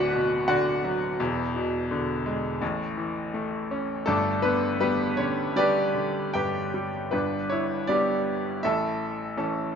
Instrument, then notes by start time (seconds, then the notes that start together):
grand piano
Already playing: D1 D2 F#4 B4 D5 F#5
0.12 B2
0.48 D3 F#4 D5 F#5
0.84 F#3
1.20 E1 E2
1.56 B2
1.91 D3
2.26 G#3
2.62 A1 A2
2.97 E3
3.34 A3
3.71 C#4
4.06 G1 G2 A3 D4 A4
4.42 D3 B3 B4
4.80 G3 B3 B4
5.17 D3 C#4 C#5
5.56 G3 D4 G4 B4 D5
5.95 D3
6.34 G2 G4 B4 G5
6.74 G3
7.11 G1 G2 D4 B4
7.50 E4 C#5
7.87 G3 B3 D4 G4 D5
8.63 A1 A2 A4 E5
9.37 E3 A3 C#4 A4